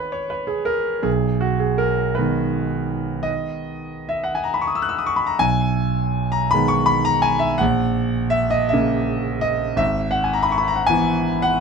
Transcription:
Already playing: D#3 G#3 B3 B4 C#5
0.12 C#5
0.30 B4
0.47 G#4
0.65 A#4
1.03 B1 G#4
1.41 F#4
1.60 G#4
1.78 A#4
2.15 D#3 B3 B4
2.19 G#3
3.23 D#5
4.09 E5
4.24 F#5
4.35 G#5
4.44 A#5
4.54 B5
4.61 C#6
4.67 D#6
4.75 E6
4.82 F#6
4.89 E6
4.99 D#6
5.06 C#6
5.16 B5
5.26 A#5
5.39 B1 G#5
6.32 A#5
6.51 D#3 G#3 B5
6.55 B3
6.68 C#6
6.86 B5
7.05 A#5
7.22 G#5
7.39 E5
7.58 A#1 F#5
8.30 E5
8.50 D#5
8.69 C#3 E5
8.73 A#3 C#4
9.41 D#5
9.76 G#1 E5
10.11 F#5
10.24 G#5
10.33 A#5
10.43 B5
10.52 C#6
10.58 B5
10.68 A#5
10.76 F#5
10.87 E3 B3 G#5
11.42 F#5

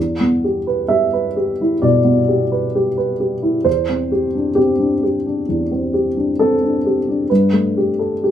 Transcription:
Already playing: E2
0.21 B3
0.44 G4
0.67 B4
0.88 G4 E5
1.13 B4
1.37 G4
1.61 E4
1.82 B2 D5
2.04 B3
2.28 G4
2.52 B4
2.75 G4
2.97 B4
3.20 G4
3.43 E4
3.65 E2 C5
3.89 C4
4.12 G4
4.35 D4
4.55 C4 G4
4.79 D4
5.03 G4
5.26 D4
5.49 E2
5.72 C4
5.94 G4
6.17 D4
6.39 C4 A4
6.63 D4
6.86 G4
7.09 D4
7.30 G2 B4
7.53 A3
7.77 G4
7.99 A4
8.24 G4

